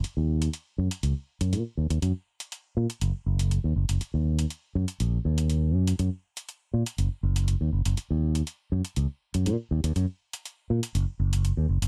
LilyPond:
<<
  \new Staff \with { instrumentName = "Fingered electric bass" } { \clef bass \time 4/4 \key dis \minor \tempo 4 = 121 r16 dis,8 r8. fis,16 r16 cis,16 r8 fis,16 ais,16 r16 dis,16 dis,16 | fis,16 r4 r16 ais,16 r16 fis,,16 r16 fis,,8 r16 dis,16 fis,,16 fis,,16 | r16 dis,8 r8. fis,16 r16 ais,,16 r16 dis,4 fis,16 r16 | fis,16 r4 r16 ais,16 r16 fis,,16 r16 fis,,8 r16 dis,16 fis,,16 fis,,16 |
r16 dis,8 r8. fis,16 r16 cis,16 r8 fis,16 ais,16 r16 dis,16 dis,16 | fis,16 r4 r16 ais,16 r16 fis,,16 r16 fis,,8 r16 dis,16 fis,,16 fis,,16 | }
  \new DrumStaff \with { instrumentName = "Drums" } \drummode { \time 4/4 hh8. hh16 hh8. hh16 hh8. hh16 hh8. hh16 | hh8. hh16 hh8. hh16 hh8. hh16 hh8. hh16 | hh8. hh16 hh8. hh16 hh8. hh16 hh8. hh16 | hh8. hh16 hh8. hh16 hh8. hh16 hh8. hh16 |
hh8. hh16 hh8. hh16 hh8. hh16 hh8. hh16 | hh8. hh16 hh8. hh16 hh8. hh16 hh8. hh16 | }
>>